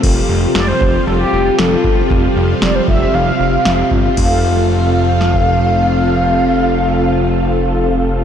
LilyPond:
<<
  \new Staff \with { instrumentName = "Soft synth lead" } { \time 4/4 \key f \major \tempo 4 = 116 r4 d''16 c''8. a'16 g'8. a'8. r16 | r4 d''16 c''16 e''8 f''4. r8 | f''1~ | f''1 | }
  \new Staff \with { instrumentName = "Analog polysynth" } { \time 4/4 \key f \major <c' f' g'>1~ | <c' f' g'>1 | <c' f' a'>1~ | <c' f' a'>1 | }
  \new Staff \with { instrumentName = "String machine" } { \clef bass \time 4/4 \key f \major <c f g f'>1~ | <c f g f'>1 | <c f a f'>1~ | <c f a f'>1 | }
  \new Staff \with { instrumentName = "Analog synth bass" } { \clef bass \time 4/4 \key f \major f,,8 f,,8 f,,8 f,,8 f,,8 f,,8 f,,8 g,,8 | f,,8 f,,8 f,,8 f,,8 f,,8 f,,8 f,,8 g,,8 | f,,1~ | f,,1 | }
  \new DrumStaff \with { instrumentName = "Drums" } \drummode { \time 4/4 <cymc bd>4 sn8 bd8 r4 sn8 bd8 | bd4 sn8 bd8 r4 sn8 bd8 | <cymc bd>4 r4 sn16 bd8. r4 | r4 r4 r4 r4 | }
>>